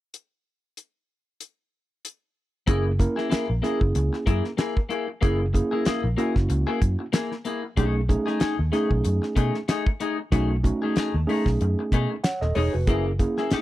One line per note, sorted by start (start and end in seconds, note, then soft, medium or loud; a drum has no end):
0.14 closed hi-hat medium
0.77 closed hi-hat medium
1.40 closed hi-hat medium
2.05 closed hi-hat medium
2.67 3.05 F#1 loud
2.67 2.88 A#3 medium
2.67 2.91 A#3 medium
2.67 2.91 C#4 medium
2.67 2.85 E4 loud
2.67 2.91 E4 medium
2.67 2.91 G#4 medium
2.67 2.84 G#4 medium
2.67 kick loud
2.67 closed hi-hat medium
2.86 muted clean electric guitar stroke medium
2.99 3.44 A#3 medium
2.99 3.44 C#4 medium
2.99 3.44 E4 medium
2.99 3.44 A#4 medium
2.99 muted clean electric guitar stroke soft
2.99 kick medium
2.99 closed hi-hat medium
3.16 3.28 A#3 soft
3.16 3.29 E4 soft
3.16 3.30 G#4 medium
3.16 snare soft
3.30 3.51 A#3 medium
3.30 3.48 E4 medium
3.30 3.47 G#4 medium
3.30 muted fingered electric bass stroke soft
3.30 snare loud
3.30 closed hi-hat medium
3.48 3.60 A#1 medium
3.48 muted clean electric guitar stroke soft
3.62 3.80 A#3 medium
3.62 4.50 A#3 medium
3.62 4.50 C#4 medium
3.62 3.80 E4 medium
3.62 4.50 E4 medium
3.62 4.50 G#4 medium
3.62 3.79 G#4 medium
3.62 snare soft
3.62 closed hi-hat medium
3.80 3.92 F#1 medium
3.80 muted clean electric guitar stroke soft
3.80 kick medium
3.95 4.09 C#2 loud
3.95 muted clean electric guitar stroke soft
3.95 closed hi-hat loud
4.13 muted clean electric guitar stroke medium
4.13 snare soft
4.26 4.40 F#2 loud
4.26 4.47 A#3 medium
4.26 4.44 E4 medium
4.26 4.43 G#4 medium
4.26 kick medium
4.26 closed hi-hat medium
4.44 muted clean electric guitar stroke soft
4.44 snare soft
4.57 4.79 A#3 medium
4.57 4.76 E4 medium
4.57 4.74 G#4 medium
4.57 snare loud
4.57 closed hi-hat medium
4.76 muted clean electric guitar stroke soft
4.76 kick medium
4.89 5.07 A#3 medium
4.89 5.07 E4 medium
4.89 5.06 G#4 medium
4.89 closed hi-hat medium
5.07 muted clean electric guitar stroke soft
5.21 5.60 F#1 loud
5.21 5.42 A#3 medium
5.21 5.45 A#3 medium
5.21 5.45 C#4 medium
5.21 5.39 E4 medium
5.21 5.45 E4 medium
5.21 5.45 G#4 loud
5.21 5.38 G#4 loud
5.21 kick loud
5.21 closed hi-hat medium
5.39 muted clean electric guitar stroke medium
5.53 5.98 A#3 medium
5.53 5.98 C#4 medium
5.53 5.99 E4 medium
5.53 5.99 G#4 medium
5.53 muted clean electric guitar stroke soft
5.53 kick medium
5.53 closed hi-hat medium
5.71 5.85 A#3 soft
5.71 5.85 E4 soft
5.71 5.85 G#4 medium
5.85 6.07 A#3 medium
5.85 6.03 E4 medium
5.85 6.02 G#4 medium
5.85 muted fingered electric bass stroke medium
5.85 snare loud
5.85 closed hi-hat medium
6.04 6.14 A#1 medium
6.04 muted clean electric guitar stroke medium
6.17 6.34 A#3 medium
6.17 7.05 A#3 medium
6.17 7.05 C#4 medium
6.17 6.34 E4 medium
6.17 7.05 E4 medium
6.17 7.05 F#4 medium
6.17 6.33 G#4 medium
6.17 closed hi-hat medium
6.34 6.46 F#1 medium
6.34 muted clean electric guitar stroke soft
6.34 kick medium
6.34 snare soft
6.49 6.63 C#2 loud
6.49 muted clean electric guitar stroke soft
6.49 closed hi-hat loud
6.67 6.79 A#3 medium
6.67 6.80 E4 medium
6.67 6.81 G#4 loud
6.81 6.95 F#2 medium
6.81 muted clean electric guitar stroke soft
6.81 kick medium
6.81 closed hi-hat medium
6.99 muted clean electric guitar stroke soft
7.13 7.34 A#3 medium
7.13 7.32 E4 medium
7.13 7.30 G#4 medium
7.13 snare loud
7.13 closed hi-hat loud
7.31 muted clean electric guitar stroke soft
7.31 snare soft
7.45 7.62 A#3 medium
7.45 7.63 E4 medium
7.45 7.62 G#4 medium
7.45 closed hi-hat medium
7.63 muted clean electric guitar stroke soft
7.77 8.15 B1 loud
7.77 7.98 A3 medium
7.77 8.00 A3 medium
7.77 8.00 C#4 medium
7.77 8.00 D#4 medium
7.77 7.95 D#4 medium
7.77 8.00 G#4 medium
7.77 7.94 G#4 medium
7.77 kick loud
7.77 closed hi-hat medium
7.95 muted clean electric guitar stroke soft
8.09 8.53 A3 medium
8.09 8.53 C#4 medium
8.09 8.53 D#4 medium
8.09 8.53 G#4 medium
8.09 muted clean electric guitar stroke soft
8.09 kick medium
8.09 closed hi-hat medium
8.26 8.39 A3 soft
8.26 8.39 D#4 medium
8.26 8.40 G#4 medium
8.26 snare soft
8.40 8.61 A3 medium
8.40 8.58 D#4 medium
8.40 8.57 G#4 medium
8.40 muted fingered electric bass stroke soft
8.40 snare loud
8.40 closed hi-hat medium
8.58 8.70 D#2 medium
8.58 muted clean electric guitar stroke soft
8.72 8.89 A3 medium
8.72 9.60 A3 medium
8.72 9.60 C#4 medium
8.72 9.60 D#4 medium
8.72 8.90 D#4 medium
8.72 9.60 G#4 loud
8.72 8.89 G#4 medium
8.72 snare soft
8.72 closed hi-hat medium
8.90 9.01 B1 medium
8.90 muted clean electric guitar stroke soft
8.90 kick medium
9.04 9.19 F#2 loud
9.04 muted clean electric guitar stroke soft
9.04 closed hi-hat loud
9.22 muted clean electric guitar stroke soft
9.22 snare soft
9.36 9.50 B2 medium
9.36 9.57 A3 medium
9.36 9.54 D#4 medium
9.36 9.53 G#4 medium
9.36 kick medium
9.36 closed hi-hat medium
9.54 muted clean electric guitar stroke soft
9.54 snare soft
9.68 9.89 A3 medium
9.68 9.87 D#4 medium
9.68 9.85 G#4 medium
9.68 snare loud
9.68 closed hi-hat loud
9.86 muted clean electric guitar stroke soft
9.86 kick loud
10.00 10.17 A3 medium
10.00 10.18 D#4 medium
10.00 10.17 G#4 medium
10.00 closed hi-hat medium
10.18 muted clean electric guitar stroke soft
10.32 10.70 B1 loud
10.32 10.55 A3 medium
10.32 10.53 A3 medium
10.32 10.55 C#4 medium
10.32 10.55 D#4 medium
10.32 10.50 D#4 medium
10.32 10.55 F#4 medium
10.32 10.50 G#4 loud
10.32 kick loud
10.32 closed hi-hat medium
10.51 muted clean electric guitar stroke medium
10.64 11.08 A3 medium
10.64 11.08 C#4 medium
10.64 11.08 D#4 medium
10.64 11.09 F#4 medium
10.64 muted clean electric guitar stroke soft
10.64 kick medium
10.64 closed hi-hat medium
10.82 10.95 A3 soft
10.82 10.96 D#4 soft
10.82 10.95 G#4 medium
10.96 11.17 A3 medium
10.96 11.15 D#4 medium
10.96 11.14 G#4 loud
10.96 muted fingered electric bass stroke soft
10.96 snare loud
10.96 closed hi-hat medium
11.14 11.25 D#2 medium
11.14 muted clean electric guitar stroke soft
11.27 12.15 A3 medium
11.27 11.46 A3 medium
11.27 12.15 C#4 medium
11.27 12.15 D#4 medium
11.27 11.46 D#4 medium
11.27 12.15 G#4 medium
11.27 11.46 G#4 medium
11.27 open hi-hat medium
11.46 11.57 B1 medium
11.46 muted clean electric guitar stroke soft
11.46 kick medium
11.46 snare soft
11.61 11.74 F#2 medium
11.61 muted clean electric guitar stroke soft
11.61 closed hi-hat medium
11.79 muted clean electric guitar stroke soft
11.92 12.05 B2 medium
11.92 12.13 A3 medium
11.92 12.11 D#4 medium
11.92 12.10 G#4 medium
11.92 kick medium
11.92 closed hi-hat medium
12.11 muted clean electric guitar stroke soft
12.24 12.41 C#5 medium
12.24 12.41 F#5 medium
12.24 snare loud
12.24 closed hi-hat loud
12.41 12.52 D#1 medium
12.41 12.55 A4 medium
12.41 12.55 D#5 medium
12.41 muted clean electric guitar stroke soft
12.41 snare soft
12.55 12.69 E1 medium
12.55 12.77 A3 medium
12.55 12.74 D#4 medium
12.55 12.73 G#4 medium
12.55 12.72 C#5 medium
12.55 open hi-hat medium
12.73 12.87 F1 medium
12.73 13.04 F#4 medium
12.73 13.04 B4 medium
12.73 muted clean electric guitar stroke soft
12.87 13.25 F#1 loud
12.87 13.10 A#3 medium
12.87 13.09 A#3 medium
12.87 13.10 C#4 medium
12.87 13.10 E4 medium
12.87 13.07 E4 medium
12.87 13.10 G#4 medium
12.87 13.05 G#4 medium
12.87 kick loud
12.87 closed hi-hat medium
13.06 muted clean electric guitar stroke soft
13.19 13.62 A#3 medium
13.19 13.62 C#4 medium
13.19 13.62 E4 medium
13.19 13.62 G#4 medium
13.19 muted clean electric guitar stroke soft
13.19 kick medium
13.19 closed hi-hat medium
13.37 13.51 A#3 soft
13.37 13.51 E4 soft
13.37 13.51 G#4 medium
13.37 snare soft
13.51 13.62 A#3 medium
13.51 13.62 E4 medium
13.51 13.62 G#4 loud
13.51 muted fingered electric bass stroke soft
13.51 snare loud
13.51 closed hi-hat medium